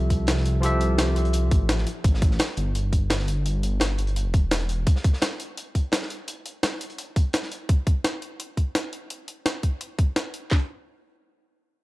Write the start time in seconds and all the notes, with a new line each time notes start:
Already playing: C2 F3 F4 G4 A4 E5
0.10 kick, closed hi-hat
0.27 snare, closed hi-hat
0.37 snare
0.45 closed hi-hat
0.61 F3 F4 G4 A4, closed hi-hat
0.66 E5
0.81 closed hi-hat
0.98 snare, closed hi-hat
1.16 C2, closed hi-hat
1.25 closed hi-hat
1.33 closed hi-hat
1.51 A1, kick, closed hi-hat
1.69 snare, closed hi-hat
1.78 snare
1.87 closed hi-hat
2.04 A1, kick, closed hi-hat
2.14 snare
2.22 kick, closed hi-hat
2.31 snare
2.39 snare, closed hi-hat
2.57 G1, closed hi-hat
2.75 closed hi-hat
2.93 kick, closed hi-hat
3.10 snare, closed hi-hat
3.19 snare
3.28 closed hi-hat
3.46 closed hi-hat
3.63 closed hi-hat
3.80 snare, closed hi-hat
3.98 G1, closed hi-hat
4.07 closed hi-hat
4.16 closed hi-hat
4.25 E1
4.34 kick, closed hi-hat
4.51 snare, closed hi-hat
4.60 closed hi-hat
4.69 closed hi-hat
4.87 kick, closed hi-hat
4.96 snare
5.04 kick, closed hi-hat
5.13 snare
5.22 snare, closed hi-hat
5.40 closed hi-hat
5.57 closed hi-hat
5.75 kick, closed hi-hat
5.92 snare, closed hi-hat
6.02 snare
6.10 closed hi-hat
6.28 closed hi-hat
6.46 closed hi-hat
6.63 snare, closed hi-hat
6.81 closed hi-hat
6.90 closed hi-hat
6.98 closed hi-hat
7.16 kick, closed hi-hat
7.33 snare, closed hi-hat
7.42 snare
7.52 closed hi-hat
7.69 kick, closed hi-hat
7.87 kick, closed hi-hat
8.04 snare, closed hi-hat
8.22 closed hi-hat
8.40 closed hi-hat
8.57 kick, closed hi-hat
8.75 snare, closed hi-hat
8.93 closed hi-hat
9.10 closed hi-hat
9.28 closed hi-hat
9.46 snare, closed hi-hat
9.63 kick, closed hi-hat
9.81 closed hi-hat
9.99 kick, closed hi-hat
10.16 snare, closed hi-hat
10.34 closed hi-hat
10.51 kick, snare, clap